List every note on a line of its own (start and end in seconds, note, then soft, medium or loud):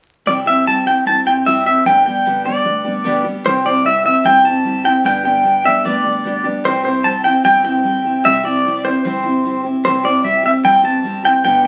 0.26 0.94 C2 medium
0.26 0.46 C3 medium
0.26 0.46 G3 medium
0.26 0.47 C4 medium
0.26 0.46 E4 medium
0.26 0.44 G4 medium
0.26 0.32 D5 medium
0.45 0.66 C4 soft
0.45 0.66 E4 soft
0.45 0.66 G4 soft
0.45 0.67 E5 medium
0.66 0.86 C3 medium
0.66 0.86 G3 medium
0.66 0.86 C4 medium
0.66 0.87 E4 medium
0.66 0.85 G4 medium
0.66 0.87 A5 medium
0.86 1.06 C4 soft
0.86 1.07 E4 soft
0.86 1.06 G4 soft
0.86 1.07 G5 medium
1.06 1.74 G2 medium
1.06 1.26 G3 soft
1.06 1.26 C4 medium
1.06 1.27 E4 medium
1.06 1.25 G4 soft
1.06 1.25 A5 medium
1.26 1.46 C4 soft
1.26 1.46 E4 soft
1.26 1.46 G4 soft
1.26 1.32 G5 medium
1.46 1.66 C3 medium
1.46 1.66 G3 medium
1.46 1.66 C4 medium
1.46 1.66 E4 medium
1.46 1.64 G4 medium
1.46 1.65 E5 medium
1.65 1.86 C4 soft
1.65 1.86 E4 soft
1.65 1.85 G4 soft
1.65 1.86 E5 medium
1.85 2.53 G1 medium
1.85 2.05 G2 medium
1.85 2.06 D3 medium
1.85 2.06 G3 medium
1.85 2.06 B3 medium
1.85 2.05 D4 medium
1.85 2.04 G4 medium
1.85 2.05 G5 medium
2.05 2.25 G3 soft
2.05 2.26 B3 soft
2.05 2.26 D4 soft
2.05 2.25 G4 medium
2.05 2.47 G5 medium
2.25 2.45 G2 medium
2.25 2.46 D3 medium
2.25 2.46 G3 medium
2.25 2.46 B3 medium
2.25 2.45 D4 medium
2.25 2.44 G4 medium
2.45 2.63 G3 soft
2.45 2.64 B3 soft
2.45 2.65 D4 soft
2.45 2.65 G4 medium
2.45 3.21 D5 medium
2.64 3.33 D2 medium
2.64 2.85 G3 soft
2.64 2.85 B3 soft
2.64 2.84 D4 medium
2.64 2.83 G4 medium
2.84 3.04 G3 soft
2.84 3.05 B3 soft
2.84 3.05 D4 soft
2.84 3.05 G4 soft
3.04 3.25 G2 medium
3.04 3.25 D3 medium
3.04 3.25 G3 medium
3.04 3.25 B3 medium
3.04 3.24 D4 medium
3.04 3.23 G4 medium
3.24 3.44 G3 soft
3.24 3.46 B3 soft
3.24 3.45 D4 medium
3.24 3.45 G4 medium
3.45 4.13 C2 medium
3.45 3.65 C3 medium
3.45 3.65 G3 medium
3.45 3.66 C4 medium
3.45 3.65 E4 medium
3.45 3.64 G4 medium
3.45 3.66 C5 medium
3.65 3.84 C4 soft
3.65 3.85 E4 soft
3.65 3.85 G4 soft
3.65 3.85 D5 medium
3.84 4.05 G3 medium
3.84 4.05 C4 medium
3.84 4.04 E4 medium
3.84 4.03 G4 medium
3.84 4.04 E5 medium
4.04 4.24 C4 soft
4.04 4.24 E4 soft
4.04 4.24 G4 soft
4.04 4.26 E5 medium
4.24 4.93 G1 medium
4.24 4.44 C3 medium
4.24 4.45 G3 medium
4.24 4.45 C4 medium
4.24 4.44 E4 medium
4.24 4.43 G4 medium
4.24 4.45 G5 medium
4.44 4.64 C4 soft
4.44 4.65 E4 soft
4.44 4.64 G4 soft
4.44 4.82 A5 loud
4.64 4.84 G3 medium
4.64 4.85 C4 medium
4.64 4.85 E4 medium
4.64 4.83 G4 medium
4.84 5.05 C4 soft
4.84 5.05 E4 soft
4.84 5.04 G4 soft
4.84 5.05 G5 medium
5.04 5.73 G1 medium
5.04 5.24 G2 medium
5.04 5.25 D3 medium
5.04 5.25 G3 medium
5.04 5.25 B3 medium
5.04 5.24 D4 medium
5.04 5.22 G4 medium
5.04 5.24 G5 medium
5.24 5.42 G3 soft
5.24 5.44 B3 soft
5.24 5.45 D4 medium
5.24 5.44 G4 soft
5.24 5.66 G5 loud
5.44 5.64 G3 medium
5.44 5.65 B3 medium
5.44 5.64 D4 medium
5.44 5.63 G4 medium
5.64 5.84 G3 soft
5.64 5.84 B3 soft
5.64 5.85 D4 medium
5.64 5.84 G4 soft
5.64 5.86 E5 medium
5.84 6.53 D2 medium
5.84 6.04 G2 medium
5.84 6.05 D3 medium
5.84 6.05 G3 medium
5.84 6.05 B3 medium
5.84 6.04 D4 medium
5.84 6.02 G4 medium
5.84 6.45 D5 medium
6.04 6.23 G3 soft
6.04 6.24 B3 soft
6.04 6.25 D4 soft
6.04 6.24 G4 soft
6.24 6.44 G3 medium
6.24 6.45 B3 medium
6.24 6.44 D4 medium
6.24 6.43 G4 medium
6.44 6.63 G3 soft
6.44 6.65 B3 soft
6.44 6.65 D4 medium
6.44 6.64 G4 medium
6.64 7.33 C2 medium
6.64 6.84 C3 medium
6.64 6.85 G3 medium
6.64 6.85 C4 medium
6.64 6.84 E4 medium
6.64 6.82 G4 medium
6.64 6.84 C5 medium
6.84 7.04 C4 soft
6.84 7.05 E4 soft
6.84 7.04 G4 medium
6.84 7.05 C5 medium
7.04 7.24 G3 medium
7.04 7.25 C4 medium
7.04 7.25 E4 medium
7.04 7.23 G4 medium
7.04 7.23 A5 medium
7.24 7.43 C4 soft
7.24 7.44 E4 soft
7.24 7.45 G4 soft
7.24 7.44 G5 medium
7.44 8.13 G1 medium
7.44 7.64 C3 medium
7.44 7.64 G3 medium
7.44 7.65 C4 medium
7.44 7.64 E4 medium
7.44 7.63 G4 medium
7.44 7.63 G5 medium
7.64 7.84 C4 soft
7.64 7.85 E4 soft
7.64 7.84 G4 soft
7.64 8.26 G5 medium
7.84 8.04 G3 medium
7.84 8.05 C4 medium
7.84 8.05 E4 medium
7.84 8.03 G4 medium
8.04 8.24 C4 soft
8.04 8.25 E4 soft
8.04 8.24 G4 soft
8.24 8.93 C2 medium
8.24 8.44 C3 medium
8.24 8.45 G3 medium
8.24 8.45 C4 medium
8.24 8.44 E4 medium
8.24 8.43 G4 medium
8.24 8.43 E5 medium
8.44 8.65 C4 soft
8.44 8.65 E4 soft
8.44 8.64 G4 medium
8.44 8.86 D5 medium
8.65 8.85 G3 medium
8.65 8.85 C4 medium
8.65 8.85 E4 medium
8.65 8.83 G4 medium
8.85 9.05 C4 soft
8.85 9.05 E4 soft
8.85 9.05 G4 soft
8.85 9.04 C5 medium
9.05 9.73 G1 medium
9.05 9.25 C3 medium
9.05 9.25 G3 medium
9.05 9.25 C4 medium
9.05 9.24 E4 medium
9.05 9.22 G4 medium
9.05 9.61 C5 medium
9.23 9.44 C4 soft
9.23 9.45 E4 soft
9.23 9.44 G4 soft
9.44 9.64 G3 medium
9.44 9.65 C4 medium
9.44 9.65 E4 medium
9.44 9.63 G4 medium
9.64 9.84 C4 soft
9.64 9.85 E4 soft
9.64 9.84 G4 medium
9.84 10.53 C2 medium
9.84 10.04 C3 medium
9.84 10.05 G3 medium
9.84 10.05 C4 medium
9.84 10.04 E4 medium
9.84 10.02 G4 medium
9.84 10.05 C5 medium
10.03 10.23 C4 soft
10.03 10.24 E4 soft
10.03 10.24 G4 medium
10.03 10.24 D5 medium
10.23 10.44 G3 medium
10.23 10.44 C4 medium
10.23 10.44 E4 medium
10.23 10.41 G4 medium
10.23 10.44 E5 medium
10.43 10.64 C4 soft
10.43 10.65 E4 soft
10.43 10.64 G4 soft
10.43 10.51 E5 medium
10.64 11.33 G1 medium
10.64 10.84 C3 medium
10.64 10.84 G3 medium
10.64 10.85 C4 medium
10.64 10.84 E4 medium
10.64 10.82 G4 medium
10.64 10.85 G5 medium
10.83 11.03 C4 soft
10.83 11.04 E4 soft
10.83 11.04 G4 soft
10.83 11.25 A5 medium
11.03 11.24 G3 medium
11.03 11.25 C4 medium
11.03 11.24 E4 medium
11.03 11.22 G4 medium
11.23 11.44 C4 soft
11.23 11.45 E4 soft
11.23 11.44 G4 soft
11.23 11.43 G5 medium
11.43 11.67 G1 medium
11.43 11.64 G2 medium
11.43 11.64 D3 medium
11.43 11.64 G3 medium
11.43 11.64 B3 medium
11.43 11.63 D4 medium
11.43 11.62 G4 medium
11.43 11.64 G5 medium
11.63 11.67 G4 soft